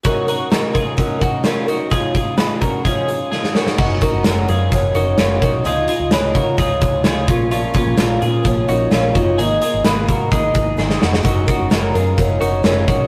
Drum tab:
CC |----------------|----------------|x---------------|----------------|
HH |x-x-x-x-x-x-x-x-|x-x-x-x-x-x-----|--x-x-x-x-x-x-x-|x-x-x-x-x-x-x-x-|
SD |----o-------o---|----o-------oooo|----o-------o---|----o-------o---|
BD |o-----o-o-o-----|o-o---o-o-------|o-o-----o-----o-|------o-o-o---o-|

CC |----------------|----------------|----------------|
HH |x-x-x-x-x-x-x-x-|x-x-x-x-x-x-----|x-x-x-x-x-x-x-x-|
SD |----o-------o---|----o-------oooo|----o-------o---|
BD |--o-----o-----o-|------o-o-o-----|o-o-----o-----o-|